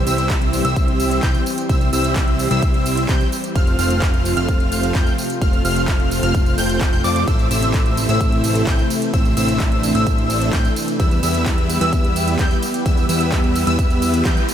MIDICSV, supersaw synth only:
0, 0, Header, 1, 2, 480
1, 0, Start_track
1, 0, Key_signature, 0, "major"
1, 0, Tempo, 465116
1, 1749, Time_signature, 4, 2, 24, 8
1, 15004, End_track
2, 0, Start_track
2, 0, Title_t, "Supersaw synth"
2, 0, Program_c, 0, 81
2, 68, Note_on_c, 0, 55, 82
2, 68, Note_on_c, 0, 60, 71
2, 68, Note_on_c, 0, 64, 73
2, 68, Note_on_c, 0, 72, 74
2, 68, Note_on_c, 0, 76, 92
2, 640, Note_off_c, 0, 55, 0
2, 640, Note_off_c, 0, 60, 0
2, 640, Note_off_c, 0, 64, 0
2, 640, Note_off_c, 0, 72, 0
2, 640, Note_off_c, 0, 76, 0
2, 668, Note_on_c, 0, 64, 88
2, 668, Note_on_c, 0, 72, 84
2, 669, Note_on_c, 0, 55, 97
2, 669, Note_on_c, 0, 60, 88
2, 669, Note_on_c, 0, 76, 107
2, 1240, Note_off_c, 0, 55, 0
2, 1240, Note_off_c, 0, 60, 0
2, 1240, Note_off_c, 0, 64, 0
2, 1240, Note_off_c, 0, 72, 0
2, 1240, Note_off_c, 0, 76, 0
2, 1268, Note_on_c, 0, 60, 80
2, 1269, Note_on_c, 0, 55, 89
2, 1269, Note_on_c, 0, 79, 100
2, 1450, Note_off_c, 0, 55, 0
2, 1450, Note_off_c, 0, 60, 0
2, 1450, Note_off_c, 0, 79, 0
2, 1749, Note_on_c, 0, 55, 82
2, 1749, Note_on_c, 0, 60, 74
2, 1749, Note_on_c, 0, 64, 74
2, 1749, Note_on_c, 0, 72, 75
2, 1749, Note_on_c, 0, 76, 91
2, 1953, Note_off_c, 0, 55, 0
2, 1953, Note_off_c, 0, 60, 0
2, 1953, Note_off_c, 0, 64, 0
2, 1953, Note_off_c, 0, 72, 0
2, 1953, Note_off_c, 0, 76, 0
2, 1989, Note_on_c, 0, 55, 77
2, 1989, Note_on_c, 0, 60, 74
2, 1989, Note_on_c, 0, 64, 74
2, 1989, Note_on_c, 0, 72, 77
2, 1989, Note_on_c, 0, 76, 90
2, 2560, Note_off_c, 0, 55, 0
2, 2560, Note_off_c, 0, 60, 0
2, 2560, Note_off_c, 0, 64, 0
2, 2560, Note_off_c, 0, 72, 0
2, 2560, Note_off_c, 0, 76, 0
2, 2588, Note_on_c, 0, 60, 87
2, 2589, Note_on_c, 0, 55, 100
2, 2589, Note_on_c, 0, 64, 88
2, 2589, Note_on_c, 0, 72, 88
2, 2589, Note_on_c, 0, 76, 104
2, 3160, Note_off_c, 0, 55, 0
2, 3160, Note_off_c, 0, 60, 0
2, 3160, Note_off_c, 0, 64, 0
2, 3160, Note_off_c, 0, 72, 0
2, 3160, Note_off_c, 0, 76, 0
2, 3189, Note_on_c, 0, 55, 87
2, 3189, Note_on_c, 0, 60, 85
2, 3189, Note_on_c, 0, 64, 81
2, 3189, Note_on_c, 0, 72, 81
2, 3189, Note_on_c, 0, 79, 98
2, 3370, Note_off_c, 0, 60, 0
2, 3370, Note_off_c, 0, 64, 0
2, 3370, Note_off_c, 0, 72, 0
2, 3370, Note_off_c, 0, 79, 0
2, 3371, Note_off_c, 0, 55, 0
2, 3669, Note_on_c, 0, 57, 78
2, 3669, Note_on_c, 0, 60, 75
2, 3669, Note_on_c, 0, 65, 71
2, 3669, Note_on_c, 0, 72, 76
2, 3669, Note_on_c, 0, 77, 91
2, 3873, Note_off_c, 0, 57, 0
2, 3873, Note_off_c, 0, 60, 0
2, 3873, Note_off_c, 0, 65, 0
2, 3873, Note_off_c, 0, 72, 0
2, 3873, Note_off_c, 0, 77, 0
2, 3908, Note_on_c, 0, 77, 89
2, 3909, Note_on_c, 0, 57, 80
2, 3909, Note_on_c, 0, 60, 75
2, 3909, Note_on_c, 0, 65, 75
2, 3909, Note_on_c, 0, 72, 77
2, 4480, Note_off_c, 0, 57, 0
2, 4480, Note_off_c, 0, 60, 0
2, 4480, Note_off_c, 0, 65, 0
2, 4480, Note_off_c, 0, 72, 0
2, 4480, Note_off_c, 0, 77, 0
2, 4508, Note_on_c, 0, 60, 90
2, 4508, Note_on_c, 0, 65, 84
2, 4508, Note_on_c, 0, 77, 106
2, 4509, Note_on_c, 0, 57, 97
2, 4509, Note_on_c, 0, 72, 89
2, 5080, Note_off_c, 0, 57, 0
2, 5080, Note_off_c, 0, 60, 0
2, 5080, Note_off_c, 0, 65, 0
2, 5080, Note_off_c, 0, 72, 0
2, 5080, Note_off_c, 0, 77, 0
2, 5109, Note_on_c, 0, 57, 93
2, 5109, Note_on_c, 0, 65, 85
2, 5290, Note_off_c, 0, 57, 0
2, 5290, Note_off_c, 0, 65, 0
2, 5589, Note_on_c, 0, 57, 78
2, 5589, Note_on_c, 0, 60, 76
2, 5589, Note_on_c, 0, 65, 74
2, 5589, Note_on_c, 0, 72, 73
2, 5589, Note_on_c, 0, 77, 90
2, 5793, Note_off_c, 0, 57, 0
2, 5793, Note_off_c, 0, 60, 0
2, 5793, Note_off_c, 0, 65, 0
2, 5793, Note_off_c, 0, 72, 0
2, 5793, Note_off_c, 0, 77, 0
2, 5829, Note_on_c, 0, 57, 77
2, 5829, Note_on_c, 0, 60, 76
2, 5829, Note_on_c, 0, 65, 73
2, 5829, Note_on_c, 0, 72, 75
2, 5829, Note_on_c, 0, 77, 86
2, 6400, Note_off_c, 0, 57, 0
2, 6400, Note_off_c, 0, 60, 0
2, 6400, Note_off_c, 0, 65, 0
2, 6400, Note_off_c, 0, 72, 0
2, 6400, Note_off_c, 0, 77, 0
2, 6429, Note_on_c, 0, 57, 98
2, 6429, Note_on_c, 0, 60, 88
2, 6429, Note_on_c, 0, 65, 84
2, 6429, Note_on_c, 0, 72, 90
2, 6429, Note_on_c, 0, 77, 105
2, 6765, Note_off_c, 0, 57, 0
2, 6765, Note_off_c, 0, 60, 0
2, 6765, Note_off_c, 0, 65, 0
2, 6765, Note_off_c, 0, 72, 0
2, 6765, Note_off_c, 0, 77, 0
2, 6788, Note_on_c, 0, 57, 79
2, 6788, Note_on_c, 0, 65, 78
2, 6788, Note_on_c, 0, 72, 72
2, 6789, Note_on_c, 0, 60, 74
2, 6789, Note_on_c, 0, 79, 88
2, 7120, Note_off_c, 0, 57, 0
2, 7120, Note_off_c, 0, 60, 0
2, 7120, Note_off_c, 0, 65, 0
2, 7120, Note_off_c, 0, 72, 0
2, 7120, Note_off_c, 0, 79, 0
2, 7149, Note_on_c, 0, 57, 76
2, 7149, Note_on_c, 0, 60, 69
2, 7149, Note_on_c, 0, 65, 70
2, 7149, Note_on_c, 0, 72, 66
2, 7149, Note_on_c, 0, 79, 84
2, 7240, Note_off_c, 0, 57, 0
2, 7240, Note_off_c, 0, 60, 0
2, 7240, Note_off_c, 0, 65, 0
2, 7240, Note_off_c, 0, 72, 0
2, 7240, Note_off_c, 0, 79, 0
2, 7268, Note_on_c, 0, 60, 85
2, 7268, Note_on_c, 0, 72, 86
2, 7268, Note_on_c, 0, 74, 107
2, 7269, Note_on_c, 0, 57, 100
2, 7269, Note_on_c, 0, 65, 87
2, 7480, Note_off_c, 0, 57, 0
2, 7480, Note_off_c, 0, 60, 0
2, 7480, Note_off_c, 0, 65, 0
2, 7480, Note_off_c, 0, 72, 0
2, 7480, Note_off_c, 0, 74, 0
2, 7509, Note_on_c, 0, 57, 81
2, 7509, Note_on_c, 0, 60, 73
2, 7509, Note_on_c, 0, 64, 73
2, 7509, Note_on_c, 0, 72, 73
2, 7509, Note_on_c, 0, 76, 88
2, 7713, Note_off_c, 0, 57, 0
2, 7713, Note_off_c, 0, 60, 0
2, 7713, Note_off_c, 0, 64, 0
2, 7713, Note_off_c, 0, 72, 0
2, 7713, Note_off_c, 0, 76, 0
2, 7749, Note_on_c, 0, 57, 80
2, 7749, Note_on_c, 0, 60, 70
2, 7749, Note_on_c, 0, 64, 73
2, 7749, Note_on_c, 0, 72, 70
2, 7749, Note_on_c, 0, 76, 86
2, 8320, Note_off_c, 0, 57, 0
2, 8320, Note_off_c, 0, 60, 0
2, 8320, Note_off_c, 0, 64, 0
2, 8320, Note_off_c, 0, 72, 0
2, 8320, Note_off_c, 0, 76, 0
2, 8349, Note_on_c, 0, 57, 93
2, 8349, Note_on_c, 0, 60, 88
2, 8349, Note_on_c, 0, 64, 90
2, 8349, Note_on_c, 0, 72, 84
2, 8349, Note_on_c, 0, 76, 105
2, 8920, Note_off_c, 0, 57, 0
2, 8920, Note_off_c, 0, 60, 0
2, 8920, Note_off_c, 0, 64, 0
2, 8920, Note_off_c, 0, 72, 0
2, 8920, Note_off_c, 0, 76, 0
2, 8949, Note_on_c, 0, 57, 86
2, 8949, Note_on_c, 0, 60, 82
2, 8949, Note_on_c, 0, 64, 82
2, 8949, Note_on_c, 0, 72, 79
2, 8949, Note_on_c, 0, 79, 99
2, 9130, Note_off_c, 0, 72, 0
2, 9131, Note_off_c, 0, 57, 0
2, 9131, Note_off_c, 0, 60, 0
2, 9131, Note_off_c, 0, 64, 0
2, 9131, Note_off_c, 0, 79, 0
2, 9429, Note_on_c, 0, 57, 80
2, 9429, Note_on_c, 0, 60, 75
2, 9429, Note_on_c, 0, 64, 72
2, 9429, Note_on_c, 0, 72, 74
2, 9429, Note_on_c, 0, 76, 92
2, 9633, Note_off_c, 0, 57, 0
2, 9633, Note_off_c, 0, 60, 0
2, 9633, Note_off_c, 0, 64, 0
2, 9633, Note_off_c, 0, 72, 0
2, 9633, Note_off_c, 0, 76, 0
2, 9669, Note_on_c, 0, 57, 80
2, 9669, Note_on_c, 0, 60, 77
2, 9669, Note_on_c, 0, 64, 75
2, 9669, Note_on_c, 0, 72, 70
2, 9669, Note_on_c, 0, 76, 87
2, 10240, Note_off_c, 0, 57, 0
2, 10240, Note_off_c, 0, 60, 0
2, 10240, Note_off_c, 0, 64, 0
2, 10240, Note_off_c, 0, 72, 0
2, 10240, Note_off_c, 0, 76, 0
2, 10268, Note_on_c, 0, 57, 94
2, 10268, Note_on_c, 0, 60, 86
2, 10269, Note_on_c, 0, 64, 83
2, 10269, Note_on_c, 0, 72, 89
2, 10269, Note_on_c, 0, 76, 109
2, 10840, Note_off_c, 0, 57, 0
2, 10840, Note_off_c, 0, 60, 0
2, 10840, Note_off_c, 0, 64, 0
2, 10840, Note_off_c, 0, 72, 0
2, 10840, Note_off_c, 0, 76, 0
2, 10868, Note_on_c, 0, 57, 86
2, 10868, Note_on_c, 0, 60, 84
2, 10868, Note_on_c, 0, 64, 81
2, 10868, Note_on_c, 0, 79, 101
2, 10869, Note_on_c, 0, 72, 83
2, 11050, Note_off_c, 0, 57, 0
2, 11050, Note_off_c, 0, 60, 0
2, 11050, Note_off_c, 0, 64, 0
2, 11050, Note_off_c, 0, 72, 0
2, 11050, Note_off_c, 0, 79, 0
2, 11349, Note_on_c, 0, 55, 84
2, 11349, Note_on_c, 0, 59, 74
2, 11349, Note_on_c, 0, 64, 77
2, 11349, Note_on_c, 0, 71, 72
2, 11349, Note_on_c, 0, 76, 93
2, 11553, Note_off_c, 0, 55, 0
2, 11553, Note_off_c, 0, 59, 0
2, 11553, Note_off_c, 0, 64, 0
2, 11553, Note_off_c, 0, 71, 0
2, 11553, Note_off_c, 0, 76, 0
2, 11588, Note_on_c, 0, 59, 75
2, 11588, Note_on_c, 0, 71, 74
2, 11589, Note_on_c, 0, 55, 77
2, 11589, Note_on_c, 0, 64, 73
2, 11589, Note_on_c, 0, 76, 90
2, 12160, Note_off_c, 0, 55, 0
2, 12160, Note_off_c, 0, 59, 0
2, 12160, Note_off_c, 0, 64, 0
2, 12160, Note_off_c, 0, 71, 0
2, 12160, Note_off_c, 0, 76, 0
2, 12188, Note_on_c, 0, 71, 83
2, 12189, Note_on_c, 0, 55, 97
2, 12189, Note_on_c, 0, 59, 87
2, 12189, Note_on_c, 0, 64, 89
2, 12189, Note_on_c, 0, 76, 108
2, 12760, Note_off_c, 0, 55, 0
2, 12760, Note_off_c, 0, 59, 0
2, 12760, Note_off_c, 0, 64, 0
2, 12760, Note_off_c, 0, 71, 0
2, 12760, Note_off_c, 0, 76, 0
2, 12789, Note_on_c, 0, 59, 80
2, 12789, Note_on_c, 0, 71, 80
2, 12789, Note_on_c, 0, 79, 99
2, 12970, Note_off_c, 0, 59, 0
2, 12970, Note_off_c, 0, 71, 0
2, 12970, Note_off_c, 0, 79, 0
2, 13268, Note_on_c, 0, 55, 79
2, 13268, Note_on_c, 0, 59, 75
2, 13268, Note_on_c, 0, 64, 74
2, 13268, Note_on_c, 0, 76, 89
2, 13269, Note_on_c, 0, 71, 72
2, 13473, Note_off_c, 0, 55, 0
2, 13473, Note_off_c, 0, 59, 0
2, 13473, Note_off_c, 0, 64, 0
2, 13473, Note_off_c, 0, 71, 0
2, 13473, Note_off_c, 0, 76, 0
2, 13508, Note_on_c, 0, 55, 82
2, 13508, Note_on_c, 0, 59, 75
2, 13508, Note_on_c, 0, 64, 76
2, 13509, Note_on_c, 0, 71, 77
2, 13509, Note_on_c, 0, 76, 90
2, 14080, Note_off_c, 0, 55, 0
2, 14080, Note_off_c, 0, 59, 0
2, 14080, Note_off_c, 0, 64, 0
2, 14080, Note_off_c, 0, 71, 0
2, 14080, Note_off_c, 0, 76, 0
2, 14108, Note_on_c, 0, 55, 101
2, 14108, Note_on_c, 0, 59, 84
2, 14108, Note_on_c, 0, 64, 85
2, 14108, Note_on_c, 0, 76, 105
2, 14109, Note_on_c, 0, 71, 87
2, 14680, Note_off_c, 0, 55, 0
2, 14680, Note_off_c, 0, 59, 0
2, 14680, Note_off_c, 0, 64, 0
2, 14680, Note_off_c, 0, 71, 0
2, 14680, Note_off_c, 0, 76, 0
2, 14708, Note_on_c, 0, 55, 85
2, 14708, Note_on_c, 0, 59, 83
2, 14708, Note_on_c, 0, 64, 81
2, 14708, Note_on_c, 0, 79, 96
2, 14709, Note_on_c, 0, 71, 87
2, 14890, Note_off_c, 0, 55, 0
2, 14890, Note_off_c, 0, 59, 0
2, 14890, Note_off_c, 0, 64, 0
2, 14890, Note_off_c, 0, 71, 0
2, 14890, Note_off_c, 0, 79, 0
2, 15004, End_track
0, 0, End_of_file